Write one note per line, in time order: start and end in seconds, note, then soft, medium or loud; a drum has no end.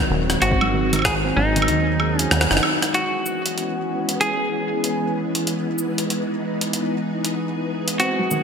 0.00 0.10 D#3 loud
0.00 2.90 D#3 medium
0.00 0.61 F#3 medium
0.00 2.90 F#3 medium
0.00 2.90 G#3 medium
0.00 0.42 C4 loud
0.00 2.90 C4 medium
0.00 0.39 F#4 medium
0.10 0.38 D#1 loud
0.10 0.20 D#3 loud
0.30 cross-stick medium
0.30 closed hi-hat medium
0.42 1.33 G#1 loud
0.42 0.59 C4 loud
0.42 1.01 F#4 loud
0.42 2.92 G#4 medium
0.42 closed hi-hat medium
0.51 kick loud
0.61 0.73 F#3 medium
0.61 high woodblock medium
0.73 0.83 D#3 medium
0.93 0.99 D#3 loud
0.93 closed hi-hat medium
0.93 high woodblock soft
0.96 high woodblock soft
0.99 high woodblock soft
1.02 1.13 G#4 loud
1.02 kick loud
1.02 cross-stick loud
1.02 closed hi-hat medium
1.02 high woodblock soft
1.24 1.35 C4 loud
1.36 1.70 G#1 medium
1.36 1.55 F#3 medium
1.36 2.20 D#4 medium
1.56 1.62 D#3 loud
1.56 closed hi-hat medium
1.62 high woodblock medium
1.68 2.28 D#2 medium
1.68 1.78 D#3 loud
1.68 closed hi-hat medium
2.00 2.10 G#4 medium
2.00 high woodblock medium
2.19 2.59 C#4 medium
2.19 2.25 F#4 medium
2.19 closed hi-hat medium
2.31 2.47 D#2 medium
2.31 2.50 D#3 medium
2.31 cross-stick loud
2.31 closed hi-hat medium
2.41 cross-stick medium
2.51 2.61 F#1 medium
2.51 2.57 D#4 loud
2.51 cross-stick medium
2.57 cross-stick medium
2.63 high woodblock medium
2.82 2.94 D#4 medium
2.82 cross-stick medium
2.82 closed hi-hat medium
2.94 7.96 E3 medium
2.94 7.96 G#3 medium
2.94 7.96 B3 medium
2.94 5.44 C#4 medium
2.94 4.20 F#4 medium
2.94 8.43 G#4 medium
2.94 closed hi-hat medium
3.26 shaker medium
3.46 closed hi-hat medium
3.58 closed hi-hat medium
4.09 closed hi-hat medium
4.21 5.11 G#4 loud
4.21 closed hi-hat medium
4.84 closed hi-hat medium
5.35 closed hi-hat medium
5.47 7.97 D#4 medium
5.47 closed hi-hat medium
5.79 shaker medium
5.98 closed hi-hat medium
6.10 closed hi-hat medium
6.61 closed hi-hat medium
6.73 closed hi-hat medium
7.25 closed hi-hat medium
7.88 closed hi-hat medium
7.99 8.43 F#3 medium
7.99 8.43 G#3 medium
7.99 8.16 C4 medium
7.99 8.43 C4 medium
7.99 8.43 D#4 medium
7.99 8.43 F#4 loud
7.99 closed hi-hat medium
8.19 8.31 F#3 medium
8.31 8.41 D#3 medium
8.31 shaker medium